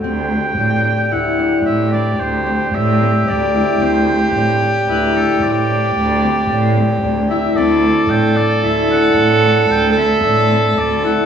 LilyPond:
<<
  \new Staff \with { instrumentName = "Oboe" } { \time 7/4 \key d \mixolydian \tempo 4 = 112 g''2 fis''4 e''8 d''8 c''4 e''4 d''4 | c''4. r8 b'8 a'8 d''2. r8 e''8 | d''4 g''8 d''8 e''8 fis''4. g''8 e''4. d''8 fis''8 | }
  \new Staff \with { instrumentName = "Viola" } { \time 7/4 \key d \mixolydian g'1.~ g'4~ | g'1.~ g'4 | a'1.~ a'4 | }
  \new Staff \with { instrumentName = "Harp" } { \time 7/4 \key d \mixolydian c'4 d'8 d'8 e'8 d'8 c'8 d'4 c'8 d'8 c'8 d'8 e'8 | c'4 d'8 d'8 e'8 d'8 c'8 d'4 c'8 d'8 c'8 d'8 e'8 | c'4 d'8 d'8 e'8 d'8 c'8 d'4 c'8 d'8 c'8 d'8 e'8 | }
  \new Staff \with { instrumentName = "Cello" } { \clef bass \time 7/4 \key d \mixolydian d,4 a,8 r8 d,4 a,4 d,4 a,4 d,4 | d,4 a,8 r8 d,4 a,4 d,4 a,4 d,4 | d,4 a,8 r8 d,4 a,4 d,4 a,4 d,4 | }
>>